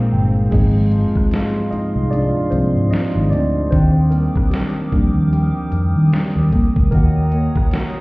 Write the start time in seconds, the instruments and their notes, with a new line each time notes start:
Already playing: nylon-string guitar A#2 G#3, tine electric piano A#2 G#3 D#4 A#4 C5 F5, analog synth pad A#3 D#4 G#4, swell
0.12 fingered electric bass G1, tine electric piano G5
0.51 fingered electric bass G#1, nylon-string guitar G#2 D#4, tine electric piano F3 G#3 A#3 C4 G#4, analog synth pad G#4 F5 C6, kick, closed hi-hat, crash
0.92 nylon-string guitar F3, closed hi-hat
1.16 kick, cross-stick
1.31 nylon-string guitar D#4, snare, closed hi-hat
1.71 nylon-string guitar C4, tine electric piano D#4 D#5, muted fingered electric bass stroke, closed hi-hat
1.96 fingered electric bass C2
2.11 nylon-string guitar F3, tine electric piano D4 D5, closed hi-hat
2.50 fingered electric bass C2, tine electric piano F3 A#3 C4 C5, closed hi-hat
2.75 fingered electric bass G#2
2.91 nylon-string guitar D#4, tine electric piano D#4 D#5, snare, closed hi-hat
3.15 fingered electric bass G#1
3.30 fingered electric bass D2, nylon-string guitar C4, tine electric piano D4 D5, closed hi-hat
3.71 fingered electric bass D#2, nylon-string guitar D#3 D4, tine electric piano C4 C5, analog synth pad A#4 G5 D6 D#6, kick, closed hi-hat
4.11 nylon-string guitar G3, tine electric piano A#3 A#4, closed hi-hat
4.36 kick, cross-stick
4.51 tine electric piano G3 G4, nylon-string guitar D4, snare, closed hi-hat
4.92 tine electric piano F3 G3 D4, nylon-string guitar A#3, muted fingered electric bass stroke, kick, closed hi-hat
5.15 fingered electric bass D#2
5.32 nylon-string guitar G3, closed hi-hat
5.72 fingered electric bass F2, closed hi-hat
5.95 fingered electric bass D#3
6.12 nylon-string guitar D4, muted fingered electric bass stroke, snare, closed hi-hat
6.36 fingered electric bass D#2
6.52 nylon-string guitar A#3, kick, closed hi-hat
6.76 fingered electric bass D2, kick
6.91 fingered electric bass D#2, nylon-string guitar D#3 F#4, tine electric piano A#3 A#4, analog synth pad C#5 F#5 A#5, kick, closed hi-hat
7.32 nylon-string guitar A#3, closed hi-hat
7.56 kick, cross-stick
7.71 nylon-string guitar F#4, snare, closed hi-hat